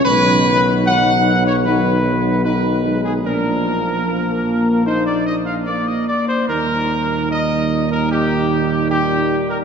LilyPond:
<<
  \new Staff \with { instrumentName = "Trumpet section" } { \time 4/4 \key ees \major \tempo 4 = 75 b'4 fis''8. des''16 b'4 b'8. aes'16 | bes'2 c''16 d''16 ees''16 f''16 d''16 ees''16 d''16 c''16 | bes'4 ees''8. bes'16 g'4 g'8. bes'16 | }
  \new Staff \with { instrumentName = "French horn section" } { \time 4/4 \key ees \major << { dis'4 dis'4 dis'4 dis'4 | d'4 bes4 ees'8. d'16 bes4 | ees'1 | } \\ { fis4 fis4 fis4 fis8 aes8 | bes4 r2. | g1 | } >> }
  \new Staff \with { instrumentName = "Trombone section" } { \clef bass \time 4/4 \key ees \major dis4 dis4 dis4 dis4 | <bes, f>2.~ <bes, f>8 r8 | <bes, ees>1 | }
  \new Staff \with { instrumentName = "Tuba" } { \clef bass \time 4/4 \key ees \major b,,1 | bes,,2.~ bes,,8 r8 | ees,1 | }
>>